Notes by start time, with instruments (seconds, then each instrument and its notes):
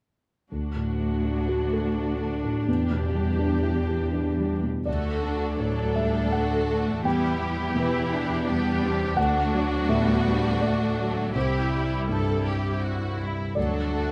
0.52 cello section D2, grand piano D2, viola section D4 F#4
0.76 grand piano A2
1.00 grand piano A3
1.25 grand piano D4
1.49 grand piano F#4
1.73 grand piano A4
1.97 grand piano D4
2.21 grand piano A3
2.44 grand piano A2
2.68 cello section E2, grand piano E2, viola section G4
2.91 grand piano B2
3.15 grand piano G3
3.39 grand piano D4
3.63 grand piano E4
3.88 grand piano G4
4.13 grand piano D4
4.38 grand piano G3
4.63 grand piano B2
4.86 cello section D2, grand piano D2 D5, viola section D3 A3, violin section F#4 A4
5.23 viola section D4
5.58 grand piano A2, viola section F#3, violin section A4
5.96 viola section G3, grand piano E5
6.32 viola section A3, violin section F#4, grand piano F#5
6.69 viola section A3
7.04 grand piano E2 G5, cello section E2, viola section G3 B3, violin section E4 G4
7.41 viola section G3
7.75 grand piano B2 B4, viola section E3 E4, violin section E4
8.12 viola section D4
8.46 viola section G3 B3, violin section D4 G4
8.82 viola section C3
9.16 grand piano D2 F#5, cello section D2, viola section A3 D4, violin section D4 F#4
9.53 viola section F#3
9.89 grand piano A2 E5, viola section G3 B3
10.25 viola section G3
10.61 viola section A3, grand piano D5
10.98 viola section F#3
11.34 cello section C2, grand piano C2 C5, viola section G3 E4, violin section E4 G4
12.08 grand piano G2, violin section A4
12.46 violin section G4
12.83 violin section F#4
13.20 violin section E4
13.55 grand piano D2 D5, cello section D2, viola section F#3 D4, violin section F#4 A4
13.95 viola section A3